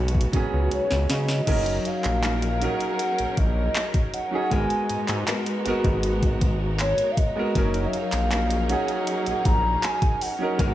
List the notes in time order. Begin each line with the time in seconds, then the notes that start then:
Already playing: B1 C#3 F#3 G#3 B3 C#4 D#4 F#4 G#4
0.08 closed hi-hat
0.15 kick
0.21 closed hi-hat
0.32 C#2 F#3 B3 C#4, kick, closed hi-hat
0.36 G#4
0.54 C#2
0.71 C#2 C#5, closed hi-hat
0.91 C#2, snare
1.10 C#3 D#5, snare, closed hi-hat
1.28 snare
1.46 F#1 F#3 C#4 D#4 G#4 A#4, kick, closed hi-hat, crash
1.66 closed hi-hat
1.85 F5, closed hi-hat
2.04 A#1, clap, closed hi-hat
2.23 C#4 D#4 A#4, clap, closed hi-hat
2.42 closed hi-hat
2.60 F#3 C#4 D#4 A#4 F#5, closed hi-hat
2.81 closed hi-hat
2.99 closed hi-hat
3.19 A#1, closed hi-hat
3.37 A#1 D#5, kick, closed hi-hat
3.75 clap, closed hi-hat
3.94 kick, closed hi-hat
4.14 F#5, closed hi-hat
4.31 F#3 C#4 D#4
4.35 G#4
4.50 G#1 G#3 B3 F#4 A#4 G#5, kick, closed hi-hat
4.70 closed hi-hat
4.90 G#2, closed hi-hat
5.08 G#2, clap, closed hi-hat
5.27 B3 F#4 A#4, clap, closed hi-hat
5.46 closed hi-hat
5.65 G#1 G#3 B3 F#4 A#4, closed hi-hat
5.84 G#1, kick, closed hi-hat
6.03 closed hi-hat
6.23 kick, closed hi-hat
6.41 kick, closed hi-hat
6.79 C#5, clap, closed hi-hat
6.98 closed hi-hat
7.11 F5
7.17 D#5, kick, closed hi-hat
7.36 G#3 B3 F#4 A#4
7.54 F#1 F#3 C#4 D#4 G#4 A#4, kick, closed hi-hat
7.74 closed hi-hat
7.87 E5
7.93 F5, closed hi-hat
8.12 A#1, clap, closed hi-hat
8.31 C#4 D#4 A#4, clap, closed hi-hat
8.50 closed hi-hat
8.68 F#3 C#4 D#4 G#4 F#5, closed hi-hat
8.88 closed hi-hat
9.07 closed hi-hat
9.26 A#1, closed hi-hat
9.45 A#1 A#5, kick, closed hi-hat
9.83 G#5, clap, closed hi-hat
10.02 kick, closed hi-hat
10.21 F#5, open hi-hat
10.39 F#3 C#4 D#4 A#4
10.57 G#1 G#3 B3 F#4 A#4, kick, closed hi-hat